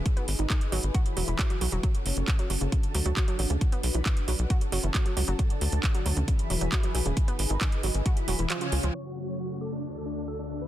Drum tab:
CC |----------------|----------------|----------------|----------------|
HH |xxoxxxoxxxoxxxox|xxoxxxoxxxoxxxox|xxoxxxoxxxoxxxox|xxoxxxoxxxoxxxox|
CP |----x-------x---|----x-------x---|----x-------x---|----x-------x---|
BD |o---o---o---o---|o---o---o---o---|o---o---o---o---|o---o---o---o---|

CC |----------------|x---------------|
HH |xxoxxxoxxxoxxxox|----------------|
CP |----x-------x---|----------------|
BD |o---o---o-------|----------------|